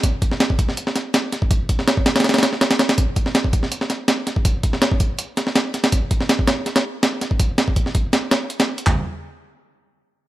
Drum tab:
HH |x---x---x---x---x---x---x---x---|x---x---x---x-xxxxxxx---x-x-x-x-|x---x---x---x---x---x---x---x---|x---x---x---x---x---x---x---x-x-|
CP |--------------------------------|--------------------------------|--------------------------------|--------------------------------|
SD |------o-o-----o---o-o---o---o---|------o-o---o-ooooooo-o-o-o-o-o-|------o-o-----o---o-o---o---o---|------o-o-----------o-o-o---o-o-|
FT |--------------------------------|--------------------------------|--------------------------------|--------------------------------|
BD |o---o-----o-o-----------------o-|o---o-----o---------------------|o---o-----o-o-----------------o-|o---o-----o-o-------------------|

HH |x---x---x---x---x-x-----x---x---|x---x---x---x---x---x---x-x---x-|--------------------------------|
CP |--------------------------------|--------------------------------|x-------------------------------|
SD |------o-o---o---o-o-----o---o---|----o-----o-----o---o-----o-----|--------------------------------|
FT |--------------------------------|--------------------------------|o-------------------------------|
BD |o---o-----o-------------------o-|o-----o-o---o-------------------|o-------------------------------|